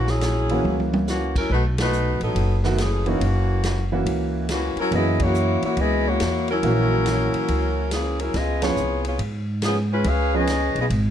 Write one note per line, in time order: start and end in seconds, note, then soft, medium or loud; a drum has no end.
0.00 0.60 A#1 medium
0.07 0.86 F#3 medium
0.07 0.87 C#4 medium
0.07 0.87 E4 medium
0.07 0.87 G#4 medium
0.07 snare soft
0.21 snare medium
0.21 hi-hat pedal medium
0.21 ride medium
0.49 1.05 E3 medium
0.49 1.05 A#3 medium
0.49 1.05 C#4 medium
0.49 1.05 F#4 medium
0.49 ride soft
0.64 1.46 C#2 medium
0.64 high tom soft
0.80 high tom soft
0.93 high tom medium
1.07 1.34 E3 medium
1.07 1.34 A#3 medium
1.07 1.34 C#4 medium
1.07 1.34 F#4 medium
1.07 snare soft
1.07 hi-hat pedal medium
1.36 1.50 F#3 medium
1.36 1.50 C#4 medium
1.36 1.50 E4 medium
1.36 1.50 A#4 medium
1.36 kick medium
1.36 crash medium
1.50 2.17 B1 medium
1.50 1.64 A3 medium
1.50 1.64 D#4 medium
1.50 1.64 F#4 medium
1.50 1.64 B4 medium
1.78 2.19 A3 medium
1.78 2.19 D#4 medium
1.78 2.19 F#4 medium
1.78 2.19 B4 medium
1.78 snare medium
1.78 ride medium
1.93 hi-hat pedal medium
2.20 2.34 A1 medium
2.20 2.62 F#3 medium
2.20 2.62 B3 medium
2.20 2.61 D#4 medium
2.20 2.62 A4 medium
2.20 ride soft
2.35 3.17 F#1 medium
2.35 ride medium
2.64 2.77 D#3 medium
2.64 2.77 A3 medium
2.64 2.77 B3 medium
2.64 2.78 F#4 medium
2.64 snare soft
2.78 3.06 E3 medium
2.78 3.06 A3 medium
2.78 3.06 C#4 medium
2.78 3.06 G#4 medium
2.78 snare medium
2.78 hi-hat pedal medium
2.78 ride medium
3.06 3.20 E3 medium
3.06 3.93 E3 medium
3.06 3.20 A#3 medium
3.06 3.93 A#3 medium
3.06 3.20 C#4 soft
3.06 3.93 C#4 medium
3.06 3.20 D#4 medium
3.06 3.93 F#4 medium
3.06 ride soft
3.20 4.02 F#1 medium
3.20 ride medium
3.63 snare medium
3.63 hi-hat pedal medium
3.63 ride medium
3.92 4.47 E3 medium
3.92 4.47 A#3 medium
3.92 4.47 C#4 soft
3.92 4.47 F#4 medium
4.06 4.73 C#2 medium
4.06 ride medium
4.49 4.77 E3 medium
4.49 4.76 A#3 medium
4.49 4.77 C#4 medium
4.49 4.77 F#4 medium
4.49 snare medium
4.49 hi-hat pedal medium
4.49 ride medium
4.76 4.92 F#3 medium
4.76 4.92 C#4 medium
4.76 4.92 E4 medium
4.76 4.92 A#4 medium
4.76 muted upright bass stroke soft
4.76 ride soft
4.91 5.58 F#2 medium
4.91 6.11 E3 medium
4.91 6.12 A#3 soft
4.91 5.20 B3 medium
4.91 6.12 C#4 soft
4.91 5.20 E4 medium
4.91 6.12 F#4 medium
4.91 5.20 D#5 medium
4.91 ride medium
4.96 5.20 G#4 medium
5.20 5.64 A#3 medium
5.20 5.64 E4 medium
5.20 5.64 F#4 medium
5.20 5.63 C#5 loud
5.20 kick medium
5.20 ride medium
5.34 hi-hat pedal medium
5.62 5.78 A#3 medium
5.62 5.78 E4 medium
5.62 5.78 F#4 medium
5.62 5.78 C#5 medium
5.62 muted upright bass stroke soft
5.62 ride soft
5.77 6.17 C#2 medium
5.77 6.06 B3 medium
5.77 6.07 E4 medium
5.77 6.07 G#4 medium
5.77 6.07 D#5 loud
5.77 ride medium
6.08 6.50 A#3 medium
6.08 6.50 E4 medium
6.08 6.50 F#4 medium
6.08 6.50 C#5 loud
6.20 6.60 E2 medium
6.20 snare medium
6.20 hi-hat pedal soft
6.20 ride medium
6.48 7.89 F#3 medium
6.48 7.89 C#4 medium
6.48 7.89 E4 medium
6.48 7.89 A#4 loud
6.48 ride soft
6.63 7.30 A#1 medium
6.63 7.83 E3 medium
6.63 7.83 A#3 medium
6.63 7.83 C#4 medium
6.63 7.83 F#4 medium
6.63 ride medium
7.06 snare medium
7.06 hi-hat pedal medium
7.06 ride medium
7.34 muted upright bass stroke soft
7.34 ride soft
7.48 8.30 C#2 medium
7.48 ride medium
7.91 8.20 E3 medium
7.91 8.20 A#3 medium
7.91 8.20 C#4 medium
7.91 8.20 G#4 medium
7.91 snare medium
7.91 hi-hat pedal medium
7.91 ride medium
8.19 8.35 F#3 medium
8.19 8.35 C#4 medium
8.19 8.35 E4 medium
8.19 8.35 A#4 medium
8.19 ride soft
8.34 8.74 C#2 medium
8.34 8.63 B3 medium
8.34 8.62 F4 medium
8.34 8.63 G#4 medium
8.34 8.63 D#5 medium
8.34 snare soft
8.34 ride medium
8.62 8.76 F3 medium
8.62 8.76 B3 medium
8.62 9.03 B3 medium
8.62 8.76 C#4 medium
8.62 9.02 F4 medium
8.62 8.76 G#4 medium
8.62 9.03 G#4 medium
8.62 9.02 C#5 medium
8.62 snare medium
8.62 ride medium
8.76 9.17 C2 medium
8.76 hi-hat pedal medium
9.05 9.20 B3 medium
9.05 9.20 F4 medium
9.05 9.20 G#4 medium
9.05 9.20 C#5 medium
9.05 ride soft
9.19 10.01 G#2 medium
9.19 ride medium
9.62 9.78 F3 medium
9.62 9.78 G#4 medium
9.62 snare medium
9.62 hi-hat pedal soft
9.62 ride medium
9.66 9.78 B3 medium
9.66 9.78 C#4 medium
9.93 10.06 G#3 medium
9.93 10.06 C#4 medium
9.93 10.06 F4 medium
9.93 10.06 B4 medium
10.04 10.72 C#2 medium
10.04 10.34 C#4 medium
10.04 10.35 G#4 medium
10.04 10.35 B4 medium
10.04 ride medium
10.08 10.35 F5 medium
10.33 10.47 F3 medium
10.33 10.47 B3 medium
10.33 10.47 C#4 medium
10.33 10.78 C#4 medium
10.33 10.47 G#4 medium
10.33 10.77 G#4 medium
10.33 10.78 B4 medium
10.33 10.78 D#5 loud
10.47 snare medium
10.47 hi-hat pedal soft
10.47 ride medium
10.75 10.89 B1 medium
10.75 ride soft
10.80 10.86 B3 medium
10.80 10.86 F4 medium
10.80 10.87 G#4 medium
10.80 10.86 D#5 medium
10.90 11.11 G#1 medium
10.90 ride medium